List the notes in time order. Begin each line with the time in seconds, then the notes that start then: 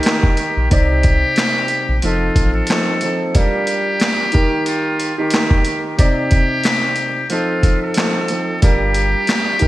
Already playing: D#3 D#4 G4 A#4
0.03 snare, closed hi-hat
0.07 clap
0.23 kick
0.37 closed hi-hat
0.57 A#1
0.70 C2 C3 C4 D#4 G4 D5, kick, closed hi-hat
1.03 kick, closed hi-hat
1.36 snare, clap, closed hi-hat
1.68 closed hi-hat
1.89 A#1
2.02 F1 F3 C4 D#4 F4 A4, closed hi-hat
2.36 A1, kick, closed hi-hat
2.54 A4
2.67 F3 C4 D#4, snare, closed hi-hat
2.71 A4, clap
3.01 F3 C4 D#4 A4, closed hi-hat
3.34 G3 D4 F4 G4 A#4, kick, closed hi-hat
3.67 closed hi-hat
4.00 snare, clap, closed hi-hat
4.32 D#3 D#4 G4 A#4, kick, closed hi-hat
4.66 F4, closed hi-hat
5.00 closed hi-hat
5.18 D#3 D#4 G4 A#4
5.30 snare, closed hi-hat
5.35 clap
5.51 kick
5.65 closed hi-hat
5.97 C3 C4 D#4 G4 D5, kick, closed hi-hat
6.31 kick, closed hi-hat
6.64 snare, clap, closed hi-hat
6.96 closed hi-hat
7.30 F3 C4 D#4 F4 A4, closed hi-hat
7.63 kick, closed hi-hat
7.82 A4
7.94 F3 C4 D#4, snare, closed hi-hat
7.99 A4, clap
8.28 F3 C4 D#4 A4, closed hi-hat
8.62 G1 G3 D4 F4 G4 A#4, kick, closed hi-hat
8.94 closed hi-hat
9.27 snare, clap, closed hi-hat
9.59 D#2 D#3 D#4 G4 A#4, kick, closed hi-hat